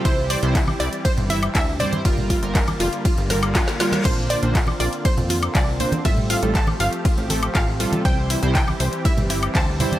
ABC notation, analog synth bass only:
X:1
M:4/4
L:1/16
Q:1/4=120
K:Cmix
V:1 name="Analog synth bass" clef=bass
C,,3 C,,3 C,, z2 G,,,3 D,,3 z | G,,,3 G,,,3 F,,, z2 G,,,3 G,, z3 | B,,,3 B,,,3 B,,, z2 F,,3 C,,3 z | A,,,3 A,,,3 G,,, z2 A,,,3 A,,,3 z |
C,,3 C,,3 C,, z2 G,,,3 D,,3 z |]